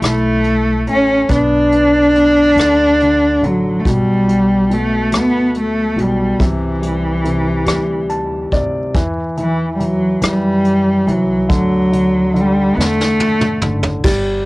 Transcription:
Already playing: grand piano A3 E4
0.02 upright bass B1, cello A3, grand piano E4, cross-stick, closed hi-hat
0.44 closed hi-hat
0.87 upright bass A1, grand piano A3, closed hi-hat
0.91 cello C#4
1.29 upright bass B1, grand piano B3, cello D4, kick, closed hi-hat
1.72 grand piano B3, closed hi-hat
2.15 grand piano B3, closed hi-hat
2.56 upright bass D2, grand piano D3, cross-stick, closed hi-hat
3.00 grand piano D3, closed hi-hat
3.42 upright bass A1, grand piano D3, closed hi-hat
3.46 cello F#3
3.80 cello A3
3.85 upright bass B1, grand piano B2, cello G3, kick, closed hi-hat
4.27 grand piano F#4, closed hi-hat
4.70 grand piano B2, cello A3, closed hi-hat
5.12 upright bass D2, grand piano A3, cross-stick, closed hi-hat
5.17 cello B3
5.54 closed hi-hat
5.59 cello A3
5.96 upright bass B1, grand piano B2, closed hi-hat
6.03 cello G3
6.39 upright bass C2, grand piano C3, kick, closed hi-hat
6.45 cello E3
6.82 grand piano G3, closed hi-hat
7.24 grand piano C3, closed hi-hat
7.66 upright bass D2, grand piano G3, cross-stick, closed hi-hat
8.10 grand piano A5, closed hi-hat
8.51 upright bass D2, grand piano C3 D5, kick, closed hi-hat
8.94 upright bass E2, grand piano E3, kick, closed hi-hat
9.37 grand piano E3, cello E3, closed hi-hat
9.75 cello G3
9.80 grand piano E3, closed hi-hat
9.84 cello F#3
10.22 upright bass F#2, grand piano E3, cross-stick, closed hi-hat
10.26 cello G3
10.65 closed hi-hat
11.07 upright bass C2, grand piano E3, closed hi-hat
11.12 cello F#3
11.49 upright bass D2, grand piano D3, kick, closed hi-hat
11.55 cello F#3
11.92 grand piano D3, closed hi-hat
12.34 grand piano D3, closed hi-hat
12.40 cello G3
12.76 upright bass E2, grand piano D3, cello B3
12.80 cello A3, snare
13.01 snare
13.20 high tom
13.41 mid tom
13.62 upright bass F#1, grand piano D3, mid tom
13.83 floor tom
14.04 upright bass G1, grand piano G3, kick, crash

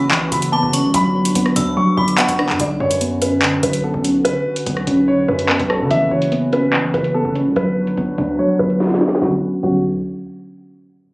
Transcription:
Already playing: 808-style bass F#1, synth pluck E3 B3 C#4, analog synth pad E3 C#4 F#4 B4, grand piano B5, synth bell E6
0.11 808-style bass A1, synth pluck E3, clap
0.32 808-style bass F#1, synth pluck E3, grand piano B5, closed hi-hat
0.42 closed hi-hat
0.52 synth pluck B3, grand piano A5, synth bell D6
0.63 808-style bass F#1
0.73 synth pluck C#4, synth bell C#6, closed hi-hat
0.84 808-style bass C#2
0.94 808-style bass G1, analog synth pad F#3 D4, synth pluck F#3, grand piano B5, closed hi-hat
1.15 synth pluck F#3
1.25 closed hi-hat
1.35 808-style bass G1, synth pluck B3, closed hi-hat
1.46 cross-stick
1.56 808-style bass D2, synth pluck D4, synth bell E6, closed hi-hat
1.77 synth pluck F#3, grand piano C#6
1.97 808-style bass G1, synth pluck F#3, grand piano B5, synth bell D6
2.08 closed hi-hat
2.18 synth pluck B3, grand piano F#5, synth bell C#6, clap, closed hi-hat
2.29 808-style bass G1, closed hi-hat
2.39 synth pluck D4, synth bell B5, cross-stick
2.49 808-style bass G2, clap
2.60 808-style bass B1, synth pluck D3, analog synth pad D3 C#4 F#4 B4, grand piano D5, closed hi-hat
2.80 808-style bass F#2, synth pluck D3, grand piano C#5
2.91 closed hi-hat
3.01 synth pluck B3, closed hi-hat
3.22 synth pluck C#4, grand piano B4, closed hi-hat
3.42 synth pluck D3, clap
3.63 808-style bass B1, synth pluck D3, grand piano B4, closed hi-hat
3.73 closed hi-hat
3.84 synth pluck B3, grand piano A4
3.94 808-style bass B1
4.04 synth pluck C#4, closed hi-hat
4.25 synth pluck D3, grand piano B4, closed hi-hat
4.46 synth pluck D3
4.56 closed hi-hat
4.66 808-style bass B1, synth pluck B3, closed hi-hat
4.77 cross-stick
4.87 808-style bass B1, synth pluck C#4, closed hi-hat
5.08 synth pluck D3, grand piano C#5
5.28 808-style bass F#2, synth pluck D3, grand piano B4
5.39 closed hi-hat
5.49 synth pluck B3, grand piano B4, clap
5.60 808-style bass B1, closed hi-hat
5.70 synth pluck C#4, grand piano A4, cross-stick
5.80 808-style bass D3
5.91 808-style bass F#1, synth pluck E3, analog synth pad E3, grand piano E5, closed hi-hat
6.11 808-style bass F#1, synth pluck E3, grand piano C#5
6.22 closed hi-hat
6.32 synth pluck B3, closed hi-hat
6.53 synth pluck C#4, grand piano B4, closed hi-hat
6.73 synth pluck E3, clap
6.94 808-style bass F#1, synth pluck E3, grand piano B4, closed hi-hat
7.04 closed hi-hat
7.14 synth pluck B3, grand piano A4
7.25 808-style bass F#1
7.35 synth pluck C#4, closed hi-hat
7.46 808-style bass C#2
7.56 808-style bass G1, analog synth pad F#3 D4 F#4, synth pluck F#3, grand piano B4, closed hi-hat
7.77 synth pluck F#3
7.87 closed hi-hat
7.97 808-style bass G1, synth pluck B3, closed hi-hat
8.18 808-style bass D2, synth pluck D4, closed hi-hat
8.39 synth pluck F#3, grand piano C#5
8.59 808-style bass G1, synth pluck F#3, grand piano B4
8.70 closed hi-hat
8.80 synth pluck B3, grand piano F#4, snare
8.87 snare, closed hi-hat
8.94 snare
9.01 synth pluck D4, snare
9.08 snare
9.15 snare
9.22 808-style bass B1, synth pluck D3 F#3 B3 C#4, analog synth pad D3 C#4 F#4 B4, grand piano F#4, snare
9.63 808-style bass B1, synth pluck D3 F#3 B3 C#4, grand piano F#4, crash

